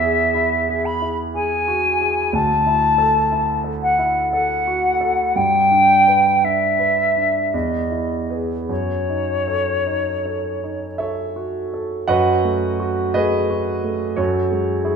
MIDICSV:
0, 0, Header, 1, 3, 480
1, 0, Start_track
1, 0, Tempo, 991736
1, 1130, Time_signature, 3, 2, 24, 8
1, 1607, Tempo, 1016949
1, 2567, Tempo, 1088929
1, 3527, Tempo, 1171875
1, 4487, Tempo, 1113173
1, 5447, Tempo, 1032702
1, 6775, End_track
2, 0, Start_track
2, 0, Title_t, "Flute"
2, 0, Program_c, 0, 73
2, 0, Note_on_c, 0, 76, 82
2, 411, Note_on_c, 0, 83, 61
2, 418, Note_off_c, 0, 76, 0
2, 568, Note_off_c, 0, 83, 0
2, 650, Note_on_c, 0, 80, 73
2, 1135, Note_on_c, 0, 81, 75
2, 1142, Note_off_c, 0, 80, 0
2, 1739, Note_off_c, 0, 81, 0
2, 1843, Note_on_c, 0, 78, 57
2, 2076, Note_off_c, 0, 78, 0
2, 2079, Note_on_c, 0, 78, 62
2, 2569, Note_on_c, 0, 79, 69
2, 2576, Note_off_c, 0, 78, 0
2, 3045, Note_on_c, 0, 76, 58
2, 3052, Note_off_c, 0, 79, 0
2, 3528, Note_on_c, 0, 75, 44
2, 3534, Note_off_c, 0, 76, 0
2, 3871, Note_off_c, 0, 75, 0
2, 4000, Note_on_c, 0, 73, 56
2, 4956, Note_off_c, 0, 73, 0
2, 6775, End_track
3, 0, Start_track
3, 0, Title_t, "Grand piano"
3, 0, Program_c, 1, 0
3, 0, Control_c, 1, 64, 127
3, 0, Note_on_c, 1, 40, 49
3, 0, Note_on_c, 1, 64, 38
3, 9, Note_on_c, 1, 68, 46
3, 103, Note_off_c, 1, 64, 0
3, 166, Note_on_c, 1, 64, 41
3, 266, Note_off_c, 1, 68, 0
3, 334, Note_on_c, 1, 68, 35
3, 426, Note_off_c, 1, 64, 0
3, 492, Note_on_c, 1, 64, 34
3, 591, Note_off_c, 1, 68, 0
3, 654, Note_on_c, 1, 68, 42
3, 748, Note_off_c, 1, 64, 0
3, 814, Note_on_c, 1, 66, 36
3, 908, Note_off_c, 1, 68, 0
3, 975, Note_on_c, 1, 68, 43
3, 1067, Note_off_c, 1, 66, 0
3, 1112, Note_off_c, 1, 40, 0
3, 1129, Note_on_c, 1, 38, 51
3, 1133, Note_off_c, 1, 68, 0
3, 1140, Control_c, 1, 64, 0
3, 1210, Control_c, 1, 64, 127
3, 1290, Note_on_c, 1, 64, 39
3, 1444, Note_on_c, 1, 69, 42
3, 1544, Note_off_c, 1, 64, 0
3, 1606, Note_on_c, 1, 64, 34
3, 1699, Note_off_c, 1, 69, 0
3, 1759, Note_on_c, 1, 69, 33
3, 1859, Note_off_c, 1, 64, 0
3, 1923, Note_on_c, 1, 64, 37
3, 2017, Note_off_c, 1, 69, 0
3, 2084, Note_on_c, 1, 69, 40
3, 2179, Note_off_c, 1, 64, 0
3, 2246, Note_on_c, 1, 66, 34
3, 2340, Note_off_c, 1, 69, 0
3, 2403, Note_on_c, 1, 69, 42
3, 2503, Note_off_c, 1, 66, 0
3, 2547, Note_off_c, 1, 38, 0
3, 2567, Note_off_c, 1, 69, 0
3, 2569, Note_on_c, 1, 43, 46
3, 2574, Control_c, 1, 64, 0
3, 2662, Control_c, 1, 64, 127
3, 2725, Note_on_c, 1, 62, 35
3, 2884, Note_on_c, 1, 71, 39
3, 2980, Note_off_c, 1, 62, 0
3, 3045, Note_on_c, 1, 62, 30
3, 3140, Note_off_c, 1, 71, 0
3, 3200, Note_on_c, 1, 71, 32
3, 3301, Note_off_c, 1, 62, 0
3, 3363, Note_on_c, 1, 62, 29
3, 3460, Note_off_c, 1, 71, 0
3, 3511, Note_off_c, 1, 43, 0
3, 3527, Note_off_c, 1, 62, 0
3, 3529, Note_on_c, 1, 40, 41
3, 3535, Control_c, 1, 64, 0
3, 3601, Control_c, 1, 64, 127
3, 3685, Note_on_c, 1, 64, 28
3, 3840, Note_on_c, 1, 68, 27
3, 3841, Note_on_c, 1, 71, 30
3, 3939, Note_off_c, 1, 64, 0
3, 3986, Note_off_c, 1, 68, 0
3, 3987, Note_off_c, 1, 71, 0
3, 3990, Note_off_c, 1, 40, 0
3, 4001, Note_on_c, 1, 42, 38
3, 4012, Control_c, 1, 64, 0
3, 4080, Control_c, 1, 64, 127
3, 4167, Note_on_c, 1, 63, 32
3, 4323, Note_on_c, 1, 69, 34
3, 4424, Note_off_c, 1, 63, 0
3, 4483, Note_on_c, 1, 63, 28
3, 4585, Note_off_c, 1, 69, 0
3, 4650, Note_on_c, 1, 69, 26
3, 4749, Note_off_c, 1, 63, 0
3, 4815, Note_on_c, 1, 63, 25
3, 4910, Note_off_c, 1, 69, 0
3, 4964, Note_on_c, 1, 76, 54
3, 4970, Note_on_c, 1, 69, 36
3, 4971, Note_on_c, 1, 73, 40
3, 5069, Note_off_c, 1, 63, 0
3, 5128, Note_on_c, 1, 66, 26
3, 5228, Note_off_c, 1, 69, 0
3, 5289, Note_on_c, 1, 69, 31
3, 5384, Note_off_c, 1, 66, 0
3, 5429, Note_off_c, 1, 73, 0
3, 5430, Note_off_c, 1, 42, 0
3, 5435, Note_on_c, 1, 78, 74
3, 5439, Note_on_c, 1, 42, 53
3, 5439, Note_on_c, 1, 75, 63
3, 5441, Note_on_c, 1, 66, 60
3, 5442, Note_on_c, 1, 71, 61
3, 5443, Note_off_c, 1, 76, 0
3, 5446, Note_off_c, 1, 69, 0
3, 5457, Control_c, 1, 64, 0
3, 5540, Control_c, 1, 64, 127
3, 5605, Note_on_c, 1, 57, 39
3, 5764, Note_off_c, 1, 66, 0
3, 5771, Note_on_c, 1, 66, 49
3, 5871, Note_off_c, 1, 57, 0
3, 5916, Note_off_c, 1, 75, 0
3, 5917, Note_off_c, 1, 71, 0
3, 5930, Note_on_c, 1, 75, 79
3, 5933, Note_off_c, 1, 78, 0
3, 5933, Note_on_c, 1, 71, 62
3, 5937, Note_on_c, 1, 57, 41
3, 5937, Note_on_c, 1, 68, 58
3, 6034, Note_off_c, 1, 66, 0
3, 6098, Note_on_c, 1, 66, 41
3, 6195, Note_off_c, 1, 57, 0
3, 6256, Note_on_c, 1, 57, 37
3, 6353, Note_off_c, 1, 66, 0
3, 6393, Note_off_c, 1, 42, 0
3, 6395, Note_off_c, 1, 71, 0
3, 6397, Note_off_c, 1, 68, 0
3, 6405, Note_on_c, 1, 73, 51
3, 6411, Note_on_c, 1, 42, 50
3, 6411, Note_on_c, 1, 66, 42
3, 6411, Note_on_c, 1, 69, 44
3, 6412, Note_off_c, 1, 75, 0
3, 6415, Note_off_c, 1, 57, 0
3, 6423, Control_c, 1, 64, 0
3, 6501, Control_c, 1, 64, 127
3, 6566, Note_on_c, 1, 56, 38
3, 6722, Note_on_c, 1, 64, 38
3, 6724, Note_on_c, 1, 68, 45
3, 6775, Note_off_c, 1, 42, 0
3, 6775, Note_off_c, 1, 56, 0
3, 6775, Note_off_c, 1, 64, 0
3, 6775, Note_off_c, 1, 66, 0
3, 6775, Note_off_c, 1, 68, 0
3, 6775, Note_off_c, 1, 69, 0
3, 6775, Note_off_c, 1, 73, 0
3, 6775, End_track
0, 0, End_of_file